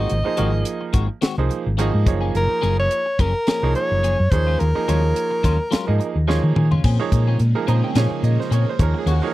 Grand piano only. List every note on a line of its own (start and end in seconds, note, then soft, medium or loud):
0.00 0.16 F3 medium
0.00 0.16 A#3 medium
0.00 0.16 D#4 medium
0.00 0.16 G#4 medium
0.00 0.16 C5 medium
0.25 0.33 F3 medium
0.25 0.33 A#3 medium
0.25 0.33 D#4 medium
0.25 0.34 G#4 medium
0.25 0.34 C5 medium
0.37 1.02 F3 medium
0.37 1.03 A#3 medium
0.37 1.03 D#4 medium
0.37 1.03 G#4 medium
0.37 1.03 A#4 medium
1.38 1.65 F3 medium
1.38 1.65 A#3 medium
1.38 1.66 D#4 medium
1.38 1.66 G#4 medium
1.38 1.66 C5 medium
1.79 2.05 F3 medium
1.79 2.05 A#3 medium
1.79 2.06 D#4 medium
1.79 2.07 G#4 medium
1.79 2.07 D#5 loud
2.07 2.97 F3 medium
2.07 2.97 A#3 medium
2.07 2.98 D#4 medium
2.07 2.98 G#4 medium
2.07 2.98 C#5 medium
3.63 4.08 F3 medium
3.63 4.08 A#3 medium
3.63 4.08 D#4 medium
3.63 4.08 G#4 medium
3.63 4.08 C#5 medium
4.32 4.66 F3 medium
4.32 4.66 A#3 medium
4.32 4.66 D#4 medium
4.32 4.66 G#4 medium
4.32 4.66 C#5 medium
4.75 4.83 F3 medium
4.75 4.83 A#3 medium
4.75 4.83 D#4 medium
4.75 4.84 G#4 medium
4.75 4.84 D#5 medium
4.88 5.53 F3 medium
4.88 5.53 A#3 medium
4.88 5.53 D#4 medium
4.88 5.53 G#4 medium
4.88 5.53 C#5 medium
5.87 6.15 F3 medium
5.87 6.15 A#3 medium
5.87 6.15 D#4 medium
5.87 6.15 G#4 medium
5.87 6.15 D#5 medium
6.28 6.65 F3 medium
6.28 6.66 A#3 medium
6.28 6.66 D#4 medium
6.28 6.66 G#4 medium
6.28 6.66 C#5 loud
6.28 6.54 D#5 medium
6.57 6.83 G#5 medium
6.99 7.35 F3 medium
6.99 7.35 A#3 medium
6.99 7.35 D#4 medium
6.99 7.35 G#4 medium
6.99 7.36 C#5 loud
7.55 7.63 F3 medium
7.55 7.63 A#3 medium
7.55 7.64 D#4 medium
7.55 7.64 G#4 medium
7.55 7.64 A#4 medium
7.68 7.87 F3 medium
7.68 7.87 A#3 medium
7.68 7.87 D#4 medium
7.68 7.87 G#4 medium
7.68 7.88 C5 medium
7.68 7.83 A#5 medium
7.84 7.96 G5 medium
7.96 8.70 F3 medium
7.96 8.70 A#3 medium
7.96 8.70 D#4 medium
7.96 8.70 G#4 medium
7.96 8.52 C#5 medium
7.96 8.23 G#5 medium
8.24 8.39 D#5 medium
8.40 8.52 C5 medium
8.53 8.68 C#5 medium
8.69 8.80 C5 medium
8.79 9.14 F3 medium
8.79 9.13 A#3 medium
8.79 9.14 D#4 medium
8.79 8.97 G#4 medium
8.79 8.96 A#4 medium
8.79 9.14 C#5 medium
8.98 9.09 G#4 medium
9.11 9.24 F#4 medium
9.22 9.34 F3 medium
9.22 9.34 A#3 medium
9.22 9.34 D#4 medium
9.22 9.34 G#4 medium
9.22 9.34 C#5 medium
9.27 9.34 A#4 medium